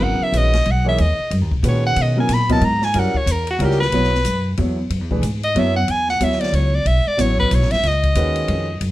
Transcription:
Already playing: grand piano C#3 F#3 B3 E4 A#4
0.00 upright bass G#1, soprano saxophone F#5
0.20 soprano saxophone E5, muted upright bass stroke
0.32 upright bass A#1, grand piano D#3 G#3 C#4 F#4 B4, hi-hat pedal, ride
0.38 soprano saxophone D#5
0.53 snare, ride
0.66 upright bass B1, ride
0.71 soprano saxophone F#5
0.85 grand piano E3 A#3 D#4 G#4 C#5
0.89 soprano saxophone E5
0.98 upright bass D#2, soprano saxophone D#5, ride
1.19 muted upright bass stroke
1.31 upright bass F#2, ride
1.41 upright bass D#2
1.51 upright bass B1, kick
1.63 upright bass A#2, grand piano D#3 G#3 C#4 F#4 B4, hi-hat pedal, ride
1.68 soprano saxophone C#5
1.86 soprano saxophone F#5
1.96 upright bass B2, ride
2.02 soprano saxophone D#5
2.17 grand piano C#3 F#3 B3 E4 A#4, soprano saxophone G#5
2.28 upright bass A#2, snare, hi-hat pedal, ride
2.34 soprano saxophone B5
2.49 grand piano F#3 B3 E4 A#4 D#5, soprano saxophone A5, kick, ride
2.61 upright bass G#2, soprano saxophone A#5, ride
2.82 soprano saxophone G#5, snare
2.94 upright bass F#2, grand piano G3 C#4 E4 F#4 A#4, ride
2.99 soprano saxophone F#5
3.14 soprano saxophone C#5, muted upright bass stroke, kick
3.26 upright bass E2, hi-hat pedal, ride
3.32 soprano saxophone A#4
3.47 soprano saxophone F#4, ride
3.59 upright bass C#2, grand piano G3 C#4 E4 F#4 A#4, ride
3.65 soprano saxophone G4
3.71 snare
3.81 soprano saxophone B4, snare
3.92 upright bass B1, grand piano F#3 B3 E4 A4 C#5, ride
4.04 snare
4.15 snare
4.25 upright bass F#2, hi-hat pedal, ride
4.57 upright bass E2, grand piano F#3 B3 E4 A4 C#5, ride
4.90 upright bass F#2, ride
5.00 upright bass E2
5.11 upright bass B1, grand piano E3 A3 D4 G#4 B4, kick
5.21 upright bass G#2, hi-hat pedal, ride
5.43 soprano saxophone D#5, ride
5.55 upright bass F#2, grand piano F#3 B3 E4 A4 C#5, ride
5.59 soprano saxophone E5
5.76 soprano saxophone F#5
5.88 upright bass E2, soprano saxophone G#5, ride
6.09 soprano saxophone F#5, snare
6.20 upright bass D2, grand piano F#3 B3 E4 A4 C#5, hi-hat pedal, ride
6.24 soprano saxophone E5
6.32 snare
6.41 soprano saxophone D5, snare, ride
6.53 upright bass C#2, soprano saxophone C#5, ride
6.76 soprano saxophone D5
6.85 upright bass B1, soprano saxophone E5, ride
7.06 soprano saxophone D5, muted upright bass stroke
7.17 upright bass A1, grand piano F#3 B3 E4 A4 C#5, soprano saxophone C#5, hi-hat pedal, ride
7.39 soprano saxophone B4, kick
7.51 upright bass B1, soprano saxophone C#5, hi-hat pedal, ride
7.62 upright bass A1, snare
7.71 upright bass F#1, soprano saxophone E5, snare, ride
7.83 upright bass C#2, snare, ride
7.88 soprano saxophone D#5
8.03 kick, ride
8.15 upright bass D#2, grand piano D#3 G#3 C#4 F#4 B4, hi-hat pedal, ride
8.36 ride
8.48 upright bass F2, ride
8.81 upright bass F#2, ride

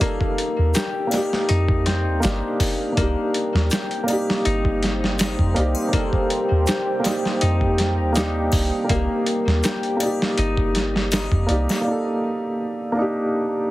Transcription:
Already playing: upright piano A#3 D#4 G4, harp D#4 G4
0.00 harp A#3, upright piano D#4 D5, kick, closed hi-hat
0.06 upright piano A4
0.21 kick
0.38 closed hi-hat
0.59 808-style bass D#2
0.74 harp G4, snare, closed hi-hat, shaker
1.07 upright piano A#3 D5
1.11 upright piano D#4, snare, closed hi-hat, triangle
1.17 upright piano G4
1.33 snare
1.48 808-style bass F2, harp D#4, closed hi-hat
1.69 kick
1.86 harp C4, snare, closed hi-hat
2.07 808-style bass D#2
2.20 upright piano A#3 D4 D#4, harp A#3, closed hi-hat, shaker
2.24 808-style bass G1, upright piano G4, snare
2.60 kick, open hi-hat, triangle
2.92 upright piano A#3 D4
2.97 808-style bass C2, harp A#3, upright piano D#4, analog synth pad G4 C5 G5, kick, closed hi-hat
3.02 upright piano G4
3.34 closed hi-hat
3.55 808-style bass D#2, snare
3.71 harp G4, snare, closed hi-hat, shaker
3.91 closed hi-hat
4.04 upright piano A#3 D5
4.08 upright piano D#4, closed hi-hat, triangle
4.13 upright piano G4
4.30 snare
4.45 808-style bass G1, harp D#4, closed hi-hat
4.65 kick
4.83 snare, closed hi-hat
5.04 snare
5.19 harp D#4, snare, closed hi-hat, triangle, shaker
5.39 808-style bass F2, kick
5.54 808-style bass C2, upright piano A#3 D#4 D5, closed hi-hat
5.59 upright piano G4
5.75 triangle
5.88 upright piano A#3 D5
5.93 harp A#3, upright piano D#4, kick, closed hi-hat
5.98 upright piano A4
6.13 kick
6.30 closed hi-hat
6.51 808-style bass D#2
6.67 harp G4, snare, closed hi-hat, shaker
7.00 upright piano A#3 D5
7.04 upright piano D#4, snare, closed hi-hat, triangle
7.09 upright piano G4
7.25 snare
7.41 808-style bass F2, harp D#4, closed hi-hat
7.61 kick
7.78 snare, closed hi-hat
7.99 808-style bass D#2
8.12 upright piano A#3 D4 D#4, harp D#4, closed hi-hat, shaker
8.17 upright piano G4, snare
8.52 808-style bass C2, kick, open hi-hat, triangle
8.84 upright piano A#3 D5
8.89 808-style bass C2, harp A#3, upright piano D#4, kick, closed hi-hat
8.94 upright piano G4
9.26 closed hi-hat
9.47 808-style bass D#2, snare
9.63 harp G4, snare, closed hi-hat, shaker
9.83 closed hi-hat
9.96 upright piano A#3 D5, closed hi-hat, triangle
10.03 upright piano D#4 G4
10.22 snare
10.38 808-style bass G1, harp D#4, closed hi-hat
10.57 kick
10.75 snare, closed hi-hat
10.96 snare
11.12 harp D#4, snare, closed hi-hat, triangle, shaker
11.32 808-style bass F2, kick
11.47 808-style bass C2, upright piano A#3 D#4 D5, closed hi-hat
11.51 upright piano G4
11.69 snare, triangle
11.81 upright piano A#3 D5
11.88 upright piano D#4 A4
12.92 upright piano A#3 D4
12.99 upright piano D#4 G4

